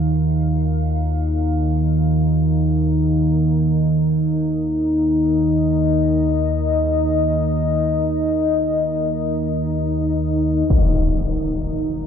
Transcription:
Already playing: synth drone D#2 D#3, ambient pad D#4 A#4 F5
3.65 ambient pad D#5
10.69 synth drone D#2 D#3, impact

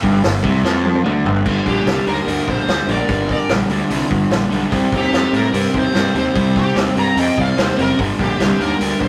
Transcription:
0.02 picked electric bass G1, overdriven electric guitar G2, kick
0.24 picked electric bass G1, overdriven electric guitar G2, snare, open hi-hat
0.44 picked electric bass C2, overdriven electric guitar C3, kick
0.64 picked electric bass F2, overdriven electric guitar F3, snare
0.85 high tom
0.95 high tom
1.05 picked electric bass D2, overdriven electric guitar D3, mid tom
1.25 picked electric bass G1, overdriven electric guitar G2, floor tom
1.36 floor tom
1.45 picked electric bass G1, overdriven electric guitar G2 D3 G3, kick, crash
1.66 picked electric bass A#1, lead electric guitar D4 G4, kick, open hi-hat
1.86 picked electric bass C2, overdriven electric guitar G2 D3 G3, snare, open hi-hat
2.07 picked electric bass D#2, overdriven electric guitar G2 D3 G3, lead electric guitar G4 A#4, open hi-hat
2.26 picked electric bass D2, overdriven electric guitar G2 D3 G3, open hi-hat
2.48 picked electric bass A#1, lead electric guitar G4 C5, kick, open hi-hat
2.67 picked electric bass D2, overdriven electric guitar G2 D3 G3, snare, open hi-hat
2.88 picked electric bass A#1, overdriven electric guitar G2 D3 G3, lead electric guitar A#4 D5, open hi-hat
3.08 picked electric bass G1, overdriven electric guitar G2 D3 G3, kick, open hi-hat
3.29 lead electric guitar A#4 D5, kick, open hi-hat
3.49 picked electric bass A#1, overdriven electric guitar G2 D3 G3, snare, open hi-hat
3.69 picked electric bass D2, overdriven electric guitar G2 D3 G3, open hi-hat
3.89 picked electric bass C2, overdriven electric guitar G2 D3 G3, open hi-hat
4.10 picked electric bass G1, kick, open hi-hat
4.31 picked electric bass A#1, overdriven electric guitar G2 D3 G3, snare, open hi-hat
4.50 picked electric bass B1, overdriven electric guitar G2 D3 G3, open hi-hat
4.70 picked electric bass C2, overdriven electric guitar C3 G3 C4, kick, open hi-hat
4.92 picked electric bass D#2, lead electric guitar D#4 G4, kick, open hi-hat
5.11 picked electric bass F2, overdriven electric guitar C3 G3 C4, snare, open hi-hat
5.32 picked electric bass A2, overdriven electric guitar C3 G3 C4, open hi-hat
5.36 lead electric guitar G4 A#4
5.52 picked electric bass G2, overdriven electric guitar C3 G3 C4, open hi-hat
5.74 picked electric bass D#2, lead electric guitar G4 C5, kick, open hi-hat
5.93 picked electric bass G2, overdriven electric guitar C3 G3 C4, snare, open hi-hat
6.14 picked electric bass D#2, overdriven electric guitar C3 G3 C4, open hi-hat
6.18 lead electric guitar G4 C5
6.34 picked electric bass C2, overdriven electric guitar C3 G3 C4, kick, open hi-hat
6.56 lead electric guitar D#4 G4, kick, open hi-hat
6.76 picked electric bass D#2, overdriven electric guitar C3 G3 C4, snare, open hi-hat
6.96 picked electric bass G2, overdriven electric guitar C3 G3 C4, lead electric guitar G5 A#5, open hi-hat
7.17 picked electric bass F2, overdriven electric guitar C3 G3 C4, lead electric guitar D#5 G5, open hi-hat
7.37 picked electric bass C2, lead electric guitar D5 F5, kick, open hi-hat
7.57 picked electric bass D#2, overdriven electric guitar C3 G3 C4, lead electric guitar G4 C5, snare, open hi-hat
7.77 picked electric bass F#1, overdriven electric guitar C3 G3 C4, lead electric guitar G4 A#4, open hi-hat
7.98 picked electric bass G1, overdriven electric guitar G2 D3 G3, kick, open hi-hat
8.19 picked electric bass A#1, lead electric guitar D4 G4, kick, open hi-hat
8.39 picked electric bass C2, overdriven electric guitar G2 D3 G3, snare, open hi-hat
8.59 picked electric bass D#2, overdriven electric guitar G2 D3 G3, lead electric guitar G4 A#4, open hi-hat
8.79 picked electric bass D2, overdriven electric guitar G2 D3 G3, open hi-hat
9.00 picked electric bass A#1, lead electric guitar G4 C5, kick, open hi-hat

